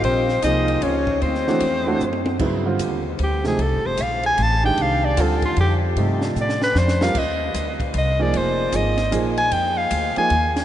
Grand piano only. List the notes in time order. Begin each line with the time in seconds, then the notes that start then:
Already playing: G3 C4 F4 A#4
0.43 F3 A#3 D#4 G#4
1.48 E3 A3 D4 F#4
1.86 E3 A3 D4 F#4
2.40 C#3 F#3 B3 E4
2.65 D3 G3 C4 F4
3.44 C3 F3 A3 D#4
4.63 D#3 G#3 D4 G4
5.17 D3 G3 C4 F4
5.97 C3 F3 A3 D#4
7.01 G3 C4 F4 A#4
8.19 F3 A#3 D#4 G#4
8.73 F3 A#3 D#4 G#4
9.11 F3 A#3 D#4 G#4
10.17 F3 A#3 D#4 G#4